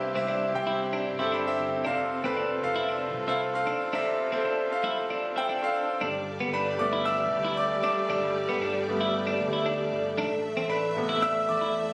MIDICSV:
0, 0, Header, 1, 5, 480
1, 0, Start_track
1, 0, Tempo, 520833
1, 1705, Time_signature, 4, 2, 24, 8
1, 10995, End_track
2, 0, Start_track
2, 0, Title_t, "Grand piano"
2, 0, Program_c, 0, 0
2, 0, Control_c, 0, 64, 127
2, 0, Note_on_c, 0, 43, 71
2, 0, Note_on_c, 0, 60, 84
2, 0, Note_on_c, 0, 67, 69
2, 0, Note_on_c, 0, 71, 83
2, 0, Note_on_c, 0, 76, 83
2, 138, Note_off_c, 0, 60, 0
2, 138, Note_on_c, 0, 60, 78
2, 144, Note_off_c, 0, 67, 0
2, 144, Note_on_c, 0, 67, 66
2, 151, Note_off_c, 0, 76, 0
2, 151, Note_on_c, 0, 76, 84
2, 397, Note_off_c, 0, 60, 0
2, 400, Note_off_c, 0, 67, 0
2, 403, Note_off_c, 0, 76, 0
2, 468, Note_off_c, 0, 43, 0
2, 496, Note_on_c, 0, 60, 76
2, 503, Note_on_c, 0, 67, 70
2, 511, Note_on_c, 0, 79, 96
2, 926, Note_off_c, 0, 60, 0
2, 930, Note_off_c, 0, 67, 0
2, 933, Note_off_c, 0, 79, 0
2, 1094, Note_on_c, 0, 60, 88
2, 1104, Note_on_c, 0, 67, 78
2, 1113, Note_on_c, 0, 69, 86
2, 1229, Note_on_c, 0, 83, 73
2, 1270, Note_off_c, 0, 60, 0
2, 1275, Note_off_c, 0, 67, 0
2, 1279, Note_off_c, 0, 69, 0
2, 1344, Note_on_c, 0, 60, 76
2, 1350, Note_on_c, 0, 67, 79
2, 1359, Note_on_c, 0, 76, 96
2, 1600, Note_off_c, 0, 60, 0
2, 1603, Note_off_c, 0, 67, 0
2, 1607, Note_off_c, 0, 76, 0
2, 1674, Note_off_c, 0, 83, 0
2, 1701, Note_on_c, 0, 60, 85
2, 1709, Note_on_c, 0, 69, 68
2, 1711, Note_on_c, 0, 48, 69
2, 1717, Control_c, 0, 64, 0
2, 1717, Note_on_c, 0, 77, 95
2, 1721, Note_off_c, 0, 71, 0
2, 1863, Control_c, 0, 64, 127
2, 1958, Note_off_c, 0, 60, 0
2, 1962, Note_off_c, 0, 69, 0
2, 1967, Note_off_c, 0, 77, 0
2, 2056, Note_on_c, 0, 60, 68
2, 2063, Note_on_c, 0, 69, 71
2, 2075, Note_on_c, 0, 71, 92
2, 2316, Note_off_c, 0, 60, 0
2, 2319, Note_off_c, 0, 69, 0
2, 2325, Note_off_c, 0, 71, 0
2, 2391, Note_off_c, 0, 48, 0
2, 2413, Note_on_c, 0, 60, 70
2, 2423, Note_on_c, 0, 69, 69
2, 2430, Note_on_c, 0, 77, 96
2, 2845, Note_off_c, 0, 60, 0
2, 2850, Note_off_c, 0, 69, 0
2, 2853, Note_off_c, 0, 77, 0
2, 3014, Note_on_c, 0, 60, 85
2, 3021, Note_on_c, 0, 69, 76
2, 3030, Note_on_c, 0, 77, 91
2, 3190, Note_off_c, 0, 60, 0
2, 3194, Note_off_c, 0, 69, 0
2, 3198, Note_off_c, 0, 77, 0
2, 3257, Note_on_c, 0, 60, 88
2, 3268, Note_on_c, 0, 69, 73
2, 3274, Note_on_c, 0, 77, 104
2, 3517, Note_off_c, 0, 60, 0
2, 3522, Note_off_c, 0, 69, 0
2, 3525, Note_off_c, 0, 77, 0
2, 3620, Note_on_c, 0, 60, 86
2, 3629, Note_on_c, 0, 48, 72
2, 3630, Note_on_c, 0, 69, 76
2, 3638, Note_on_c, 0, 76, 96
2, 3878, Note_off_c, 0, 60, 0
2, 3883, Note_off_c, 0, 69, 0
2, 3887, Note_off_c, 0, 76, 0
2, 3979, Note_on_c, 0, 60, 72
2, 3987, Note_on_c, 0, 69, 77
2, 3995, Note_on_c, 0, 72, 81
2, 4238, Note_off_c, 0, 60, 0
2, 4242, Note_off_c, 0, 69, 0
2, 4246, Note_off_c, 0, 72, 0
2, 4310, Note_off_c, 0, 48, 0
2, 4340, Note_on_c, 0, 60, 78
2, 4348, Note_on_c, 0, 69, 72
2, 4355, Note_on_c, 0, 77, 94
2, 4768, Note_off_c, 0, 60, 0
2, 4772, Note_off_c, 0, 69, 0
2, 4776, Note_off_c, 0, 77, 0
2, 4939, Note_on_c, 0, 60, 81
2, 4948, Note_on_c, 0, 69, 75
2, 4955, Note_on_c, 0, 79, 105
2, 5112, Note_off_c, 0, 60, 0
2, 5117, Note_off_c, 0, 69, 0
2, 5121, Note_off_c, 0, 79, 0
2, 5179, Note_on_c, 0, 60, 88
2, 5185, Note_on_c, 0, 69, 80
2, 5196, Note_on_c, 0, 77, 100
2, 5438, Note_off_c, 0, 60, 0
2, 5441, Note_off_c, 0, 69, 0
2, 5446, Note_off_c, 0, 77, 0
2, 5559, Control_c, 0, 64, 0
2, 5693, Control_c, 0, 64, 127
2, 6022, Note_on_c, 0, 83, 88
2, 6038, Note_on_c, 0, 71, 62
2, 6247, Note_off_c, 0, 83, 0
2, 6256, Note_off_c, 0, 71, 0
2, 6260, Note_on_c, 0, 86, 96
2, 6266, Note_on_c, 0, 55, 59
2, 6273, Note_on_c, 0, 57, 58
2, 6278, Note_on_c, 0, 59, 65
2, 6279, Note_on_c, 0, 74, 72
2, 6496, Note_off_c, 0, 74, 0
2, 6501, Note_on_c, 0, 88, 110
2, 6510, Note_off_c, 0, 86, 0
2, 6520, Note_on_c, 0, 76, 90
2, 6959, Note_off_c, 0, 76, 0
2, 6980, Note_on_c, 0, 86, 96
2, 6996, Note_on_c, 0, 74, 81
2, 6997, Note_off_c, 0, 88, 0
2, 7203, Note_off_c, 0, 86, 0
2, 7214, Note_off_c, 0, 74, 0
2, 7217, Note_on_c, 0, 86, 93
2, 7235, Note_on_c, 0, 74, 66
2, 8148, Note_off_c, 0, 55, 0
2, 8151, Note_off_c, 0, 57, 0
2, 8154, Note_off_c, 0, 59, 0
2, 8187, Note_on_c, 0, 55, 56
2, 8194, Note_on_c, 0, 57, 55
2, 8198, Note_on_c, 0, 59, 63
2, 8384, Note_off_c, 0, 86, 0
2, 8393, Note_off_c, 0, 74, 0
2, 9349, Note_off_c, 0, 55, 0
2, 9352, Note_off_c, 0, 57, 0
2, 9354, Note_off_c, 0, 59, 0
2, 9394, Control_c, 0, 64, 0
2, 9549, Control_c, 0, 64, 127
2, 9857, Note_on_c, 0, 83, 80
2, 9875, Note_on_c, 0, 71, 65
2, 10106, Note_on_c, 0, 48, 58
2, 10110, Note_on_c, 0, 57, 50
2, 10117, Note_on_c, 0, 59, 67
2, 10316, Note_off_c, 0, 71, 0
2, 10343, Note_on_c, 0, 88, 119
2, 10354, Note_on_c, 0, 76, 90
2, 10355, Note_off_c, 0, 83, 0
2, 10572, Note_off_c, 0, 76, 0
2, 10586, Note_on_c, 0, 86, 107
2, 10591, Note_off_c, 0, 88, 0
2, 10596, Note_on_c, 0, 74, 81
2, 10789, Note_off_c, 0, 48, 0
2, 10791, Note_off_c, 0, 57, 0
2, 10795, Note_off_c, 0, 59, 0
2, 10995, Note_off_c, 0, 74, 0
2, 10995, Note_off_c, 0, 86, 0
2, 10995, End_track
3, 0, Start_track
3, 0, Title_t, "String section"
3, 0, Program_c, 1, 48
3, 0, Note_on_c, 1, 60, 68
3, 0, Note_on_c, 1, 64, 57
3, 0, Note_on_c, 1, 67, 79
3, 1670, Note_off_c, 1, 64, 0
3, 1670, Note_off_c, 1, 67, 0
3, 1710, Note_on_c, 1, 69, 81
3, 1712, Note_on_c, 1, 65, 66
3, 5512, Note_off_c, 1, 65, 0
3, 5512, Note_off_c, 1, 69, 0
3, 5513, Note_off_c, 1, 60, 0
3, 5554, Note_on_c, 1, 74, 81
3, 5557, Note_on_c, 1, 55, 79
3, 5558, Note_on_c, 1, 67, 78
3, 5558, Note_on_c, 1, 69, 77
3, 9351, Note_off_c, 1, 74, 0
3, 9353, Note_off_c, 1, 55, 0
3, 9353, Note_off_c, 1, 67, 0
3, 9389, Note_on_c, 1, 57, 81
3, 9390, Note_on_c, 1, 76, 93
3, 10995, Note_off_c, 1, 57, 0
3, 10995, Note_off_c, 1, 69, 0
3, 10995, Note_off_c, 1, 76, 0
3, 10995, End_track
4, 0, Start_track
4, 0, Title_t, "Clean electric guitar"
4, 0, Program_c, 2, 27
4, 142, Note_on_c, 2, 60, 82
4, 257, Note_off_c, 2, 60, 0
4, 261, Note_on_c, 2, 62, 84
4, 377, Note_off_c, 2, 62, 0
4, 616, Note_on_c, 2, 64, 84
4, 734, Note_off_c, 2, 64, 0
4, 857, Note_on_c, 2, 62, 79
4, 975, Note_off_c, 2, 62, 0
4, 1098, Note_on_c, 2, 64, 63
4, 1215, Note_off_c, 2, 64, 0
4, 1216, Note_on_c, 2, 62, 81
4, 1559, Note_off_c, 2, 62, 0
4, 1702, Note_on_c, 2, 62, 99
4, 1817, Note_off_c, 2, 62, 0
4, 2064, Note_on_c, 2, 60, 79
4, 2178, Note_off_c, 2, 60, 0
4, 2182, Note_on_c, 2, 62, 83
4, 2298, Note_off_c, 2, 62, 0
4, 2540, Note_on_c, 2, 64, 84
4, 2657, Note_off_c, 2, 64, 0
4, 2659, Note_on_c, 2, 62, 75
4, 2776, Note_off_c, 2, 62, 0
4, 3022, Note_on_c, 2, 64, 66
4, 3138, Note_off_c, 2, 64, 0
4, 3380, Note_on_c, 2, 62, 80
4, 3497, Note_off_c, 2, 62, 0
4, 3622, Note_on_c, 2, 62, 109
4, 3738, Note_off_c, 2, 62, 0
4, 3983, Note_on_c, 2, 60, 75
4, 4098, Note_off_c, 2, 60, 0
4, 4102, Note_on_c, 2, 62, 86
4, 4218, Note_off_c, 2, 62, 0
4, 4460, Note_on_c, 2, 64, 88
4, 4576, Note_off_c, 2, 64, 0
4, 4703, Note_on_c, 2, 62, 80
4, 4818, Note_off_c, 2, 62, 0
4, 4941, Note_on_c, 2, 64, 66
4, 5057, Note_off_c, 2, 64, 0
4, 5060, Note_on_c, 2, 62, 84
4, 5401, Note_off_c, 2, 62, 0
4, 5541, Note_on_c, 2, 62, 110
4, 5657, Note_off_c, 2, 62, 0
4, 5903, Note_on_c, 2, 59, 86
4, 6018, Note_off_c, 2, 59, 0
4, 6024, Note_on_c, 2, 62, 86
4, 6139, Note_off_c, 2, 62, 0
4, 6384, Note_on_c, 2, 64, 85
4, 6499, Note_off_c, 2, 64, 0
4, 6500, Note_on_c, 2, 62, 84
4, 6617, Note_off_c, 2, 62, 0
4, 6862, Note_on_c, 2, 64, 79
4, 6978, Note_off_c, 2, 64, 0
4, 7222, Note_on_c, 2, 62, 93
4, 7337, Note_off_c, 2, 62, 0
4, 7462, Note_on_c, 2, 62, 119
4, 7578, Note_off_c, 2, 62, 0
4, 7823, Note_on_c, 2, 59, 86
4, 7938, Note_off_c, 2, 59, 0
4, 7942, Note_on_c, 2, 62, 82
4, 8057, Note_off_c, 2, 62, 0
4, 8301, Note_on_c, 2, 64, 81
4, 8417, Note_off_c, 2, 64, 0
4, 8541, Note_on_c, 2, 62, 87
4, 8657, Note_off_c, 2, 62, 0
4, 8782, Note_on_c, 2, 64, 63
4, 8897, Note_off_c, 2, 64, 0
4, 8901, Note_on_c, 2, 62, 90
4, 9241, Note_off_c, 2, 62, 0
4, 9385, Note_on_c, 2, 62, 117
4, 9499, Note_off_c, 2, 62, 0
4, 9740, Note_on_c, 2, 60, 90
4, 9854, Note_off_c, 2, 60, 0
4, 9858, Note_on_c, 2, 62, 89
4, 9975, Note_off_c, 2, 62, 0
4, 10221, Note_on_c, 2, 64, 83
4, 10337, Note_off_c, 2, 64, 0
4, 10343, Note_on_c, 2, 62, 93
4, 10457, Note_off_c, 2, 62, 0
4, 10704, Note_on_c, 2, 64, 70
4, 10818, Note_off_c, 2, 64, 0
4, 10995, End_track
5, 0, Start_track
5, 0, Title_t, "Picked electric bass"
5, 0, Program_c, 3, 34
5, 0, Note_on_c, 3, 36, 73
5, 117, Note_off_c, 3, 36, 0
5, 144, Note_on_c, 3, 36, 91
5, 479, Note_off_c, 3, 36, 0
5, 502, Note_on_c, 3, 36, 110
5, 982, Note_on_c, 3, 31, 70
5, 996, Note_off_c, 3, 36, 0
5, 1430, Note_off_c, 3, 31, 0
5, 1463, Note_on_c, 3, 31, 72
5, 1702, Note_off_c, 3, 31, 0
5, 1702, Note_on_c, 3, 29, 88
5, 2038, Note_off_c, 3, 29, 0
5, 2064, Note_on_c, 3, 29, 91
5, 2400, Note_off_c, 3, 29, 0
5, 2426, Note_on_c, 3, 29, 90
5, 2908, Note_off_c, 3, 29, 0
5, 2908, Note_on_c, 3, 36, 81
5, 3353, Note_off_c, 3, 36, 0
5, 5545, Note_on_c, 3, 31, 82
5, 5880, Note_off_c, 3, 31, 0
5, 5906, Note_on_c, 3, 31, 91
5, 6240, Note_off_c, 3, 31, 0
5, 6263, Note_on_c, 3, 31, 111
5, 6744, Note_off_c, 3, 31, 0
5, 6744, Note_on_c, 3, 38, 84
5, 7191, Note_off_c, 3, 38, 0
5, 7463, Note_on_c, 3, 31, 99
5, 7798, Note_off_c, 3, 31, 0
5, 7822, Note_on_c, 3, 31, 108
5, 8158, Note_off_c, 3, 31, 0
5, 8185, Note_on_c, 3, 31, 91
5, 8631, Note_off_c, 3, 31, 0
5, 8662, Note_on_c, 3, 38, 82
5, 9110, Note_off_c, 3, 38, 0
5, 9145, Note_on_c, 3, 31, 85
5, 9368, Note_off_c, 3, 31, 0
5, 9385, Note_on_c, 3, 33, 91
5, 9719, Note_off_c, 3, 33, 0
5, 9742, Note_on_c, 3, 33, 95
5, 10078, Note_off_c, 3, 33, 0
5, 10105, Note_on_c, 3, 33, 102
5, 10551, Note_off_c, 3, 33, 0
5, 10588, Note_on_c, 3, 40, 99
5, 10995, Note_off_c, 3, 40, 0
5, 10995, End_track
0, 0, End_of_file